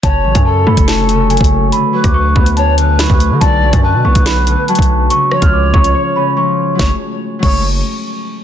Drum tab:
CC |------------------------------------------------|------------------------------------------------|------------------------------------------------|------------------------------------------------|
HH |x--------x-----------x--------x-----x-x-x-------|x--------x-----------x--x-----x-----x-----x-----|x--------x-----------x--------x-----x-x-x-------|x--------x-----------x--------------------------|
SD |------------------------o-----------------------|---------r--------------------------o-----------|------------------------o-----------------------|------r-----------------------------------------|
BD |o--------o-----------o-----------------o--------|---------o--------o--------------------o--------|o--------o-----------o-----------------o--------|---------o--------o-----------------------------|

CC |------------------x-----------------------------|
HH |------------------------------------------------|
SD |o-----------------------------------------------|
BD |o-----------------o-----------------------------|